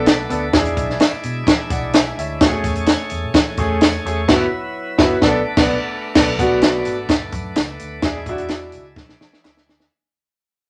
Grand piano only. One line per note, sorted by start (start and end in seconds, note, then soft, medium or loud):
0.00 0.11 B3 medium
0.00 0.11 D4 medium
0.00 0.11 A4 loud
0.30 0.44 B3 medium
0.30 0.44 D4 medium
0.30 0.44 A4 medium
0.54 1.08 D4 medium
0.54 1.08 E4 medium
0.54 1.08 G#4 medium
1.71 1.94 D5 medium
1.71 1.93 F#5 medium
1.95 2.17 E5 medium
1.95 2.17 G#5 medium
2.19 2.63 C#5 medium
2.19 2.63 E5 medium
2.41 2.95 A3 medium
2.41 2.95 C#4 medium
2.41 2.47 F#4 medium
2.48 2.99 G#4 medium
3.58 3.85 A3 medium
3.58 3.86 C#4 medium
3.58 3.86 G#4 medium
4.06 4.19 A3 medium
4.06 4.19 C#4 medium
4.06 4.19 G#4 medium
4.28 4.44 B3 medium
4.28 4.45 E4 medium
4.28 4.44 F#4 loud
4.98 5.14 B3 medium
4.98 5.15 E4 medium
4.98 5.15 F#4 loud
5.23 5.39 B3 medium
5.23 5.39 D4 loud
5.23 5.39 A4 loud
5.58 5.74 B3 loud
5.58 5.74 D4 loud
6.16 6.30 B3 medium
6.16 6.30 D4 medium
6.16 6.30 A4 medium
6.39 6.93 B3 medium
6.39 6.94 D4 medium
6.39 6.94 F#4 loud
8.04 8.17 D4 medium
8.04 8.18 E4 medium
8.04 8.18 G#4 medium
8.29 8.82 D4 medium
8.29 8.82 E4 medium
8.29 8.83 F#4 loud
9.44 9.66 E5 medium
9.66 9.89 G#5 medium